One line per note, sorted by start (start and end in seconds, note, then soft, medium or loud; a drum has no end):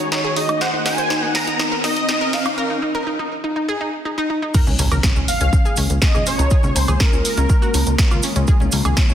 0.00 2.54 D#3 medium
0.00 0.57 C#4 medium
0.00 0.57 F#4 medium
0.00 2.54 G#4 loud
0.00 0.33 C#5 medium
0.00 riser medium
0.12 0.21 D#4 medium
0.12 snare medium
0.12 closed hi-hat medium
0.24 0.34 G#4 medium
0.36 0.46 D#4 medium
0.36 0.59 D#5 medium
0.36 open hi-hat medium
0.49 0.58 D#4 medium
0.49 closed hi-hat medium
0.49 high woodblock medium
0.61 2.56 C4 medium
0.61 2.56 A#4 medium
0.61 0.71 C5 loud
0.61 0.72 F#5 loud
0.61 snare medium
0.61 closed hi-hat medium
0.73 0.83 D#4 medium
0.86 0.95 D#4 medium
0.86 1.31 G#5 loud
0.86 snare medium
0.86 open hi-hat loud
0.98 1.07 C5 medium
0.98 closed hi-hat medium
1.10 1.20 D#4 medium
1.10 snare medium
1.10 closed hi-hat medium
1.23 1.32 D#4 medium
1.35 1.58 A#5 loud
1.35 snare medium
1.35 open hi-hat medium
1.47 1.57 D#4 medium
1.47 closed hi-hat medium
1.59 1.69 D#4 medium
1.59 snare medium
1.59 closed hi-hat medium
1.72 1.81 A#4 medium
1.84 1.93 D#4 medium
1.84 2.30 D#5 medium
1.84 snare medium
1.84 open hi-hat loud
1.97 closed hi-hat medium
2.09 2.18 D#4 medium
2.09 snare medium
2.09 closed hi-hat medium
2.21 2.30 A#4 loud
2.33 2.43 D#4 medium
2.33 2.44 F5 medium
2.33 snare medium
2.33 open hi-hat medium
2.46 2.55 D#4 medium
2.46 closed hi-hat medium
2.46 high woodblock medium
2.58 2.67 A#4 loud
2.70 2.79 D#4 medium
2.82 2.92 D#4 medium
2.95 3.04 A#4 loud
3.07 3.16 D#4 medium
3.19 3.29 D#4 medium
3.44 3.53 D#4 medium
3.56 3.66 D#4 medium
3.69 3.78 G#4 medium
3.81 3.90 D#4 medium
4.05 4.15 D#4 medium
4.18 4.27 D#4 medium
4.30 4.39 D#4 medium
4.42 4.52 D#4 medium
4.54 9.14 C#3 medium
4.54 9.14 G#3 medium
4.54 9.14 A#3 medium
4.54 9.14 F4 medium
4.54 4.64 A#4 loud
4.54 kick loud
4.54 closed hi-hat medium
4.54 crash loud
4.54 impact medium
4.54 cabasa soft
4.67 4.76 C#2 medium
4.67 4.76 C#4 medium
4.67 low conga medium
4.67 cabasa soft
4.79 4.89 C#2 loud
4.79 4.89 C#4 medium
4.79 open hi-hat loud
4.79 cabasa medium
4.79 high woodblock medium
4.91 5.01 C#2 medium
4.91 5.01 A#4 medium
4.91 closed hi-hat medium
4.91 high conga medium
4.91 cabasa soft
4.91 high woodblock medium
5.03 5.13 C#4 medium
5.03 kick loud
5.03 snare loud
5.03 closed hi-hat medium
5.03 cabasa medium
5.16 5.26 C#2 medium
5.16 5.25 C#4 medium
5.16 cabasa soft
5.28 5.74 F5 loud
5.28 open hi-hat medium
5.28 cabasa medium
5.40 5.50 C#2 medium
5.40 5.50 C#4 medium
5.40 closed hi-hat medium
5.40 cabasa soft
5.53 5.62 C#4 medium
5.53 kick loud
5.53 closed hi-hat medium
5.53 cabasa soft
5.65 5.75 G#4 medium
5.65 cabasa soft
5.76 5.87 C#2 medium
5.76 5.87 C#4 medium
5.76 open hi-hat loud
5.76 cabasa medium
5.90 5.99 C#2 medium
5.90 closed hi-hat medium
5.90 cabasa soft
6.02 6.12 C#4 medium
6.02 6.25 D#5 loud
6.02 kick loud
6.02 snare loud
6.02 closed hi-hat medium
6.02 cabasa medium
6.14 6.24 C#2 medium
6.14 6.24 G#4 medium
6.14 high conga medium
6.14 low conga loud
6.14 cabasa soft
6.14 high woodblock medium
6.26 6.36 C#4 medium
6.26 6.75 C#5 loud
6.26 open hi-hat loud
6.26 cabasa loud
6.38 6.48 C#2 medium
6.38 6.48 C#4 medium
6.38 closed hi-hat medium
6.38 cabasa soft
6.38 high woodblock medium
6.50 6.61 G#4 loud
6.50 kick loud
6.50 closed hi-hat medium
6.50 cabasa medium
6.63 6.73 C#2 medium
6.63 6.73 C#4 medium
6.63 low conga loud
6.63 cabasa soft
6.75 6.85 C#2 loud
6.75 6.85 C#4 medium
6.75 7.02 C5 loud
6.75 open hi-hat loud
6.75 cabasa loud
6.75 high woodblock medium
6.88 6.98 C#2 medium
6.88 6.98 G#4 medium
6.88 closed hi-hat medium
6.88 high conga medium
6.88 cabasa soft
6.88 high woodblock medium
7.00 7.10 C#4 medium
7.00 7.25 A#4 medium
7.00 kick loud
7.00 snare loud
7.00 closed hi-hat medium
7.00 cabasa medium
7.13 7.22 C#2 medium
7.13 7.22 C#4 medium
7.13 cabasa soft
7.25 8.19 A#4 medium
7.25 open hi-hat loud
7.25 cabasa loud
7.37 7.47 C#2 medium
7.37 7.47 C#4 medium
7.37 closed hi-hat medium
7.37 cabasa soft
7.49 7.59 C#4 medium
7.49 kick loud
7.49 closed hi-hat medium
7.49 cabasa soft
7.62 7.71 F#4 medium
7.62 cabasa soft
7.74 7.84 C#2 loud
7.74 7.84 C#4 medium
7.74 open hi-hat loud
7.74 cabasa loud
7.74 high woodblock medium
7.87 7.96 C#2 medium
7.87 closed hi-hat medium
7.87 cabasa soft
7.98 8.08 C#4 medium
7.98 kick loud
7.98 snare loud
7.98 closed hi-hat medium
7.98 cabasa medium
8.11 8.21 C#2 medium
8.11 8.20 F4 medium
8.11 high conga medium
8.11 cabasa soft
8.11 high woodblock medium
8.23 8.33 C#4 medium
8.23 open hi-hat loud
8.23 cabasa medium
8.36 8.45 C#2 medium
8.36 8.45 C#4 medium
8.36 closed hi-hat medium
8.36 cabasa soft
8.47 8.57 G#4 loud
8.47 kick loud
8.47 closed hi-hat medium
8.47 cabasa medium
8.60 8.70 C#2 medium
8.60 8.70 C#4 medium
8.60 low conga loud
8.60 cabasa soft
8.72 8.82 C#2 loud
8.72 8.82 C#4 medium
8.72 open hi-hat loud
8.72 cabasa loud
8.72 high woodblock medium
8.85 8.94 C#2 medium
8.85 8.94 G#4 medium
8.85 closed hi-hat medium
8.85 high conga medium
8.85 cabasa soft
8.85 high woodblock medium
8.97 9.07 C#4 medium
8.97 kick loud
8.97 snare loud
8.97 closed hi-hat medium
8.97 cabasa medium
9.09 9.14 C#2 medium
9.09 9.14 C#4 medium
9.09 cabasa soft